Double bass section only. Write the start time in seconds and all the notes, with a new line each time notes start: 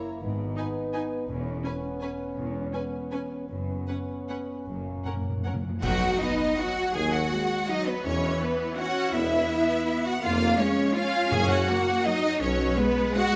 0.22 G#1
1.29 E1
2.36 E1
3.49 F#1
4.67 F#1
5.82 B1
6.94 D#2
8.04 E2
9.14 E2
10.23 F2
11.32 F#2
12.40 B1